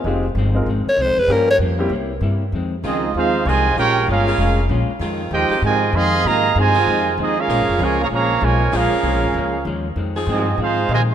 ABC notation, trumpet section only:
X:1
M:4/4
L:1/8
Q:"Swing" 1/4=194
K:Fm
V:1 name="Trumpet section"
z8 | z8 | z2 [CFAe]2 [EAcf]2 [Fcea]2 | [FBdg]2 [DABf]4 z2 |
z2 [Fceg]2 [Fcea]2 [Aefc']2 | [Aefb]2 [Fcea]4 [CFAe] [DABf]- | [DABf]2 [FBda] [Adfb] [Adfb]2 [FBda]2 | [DABf]6 z2 |
z2 [CFAe]2 [EAcf]2 [Fcea] z |]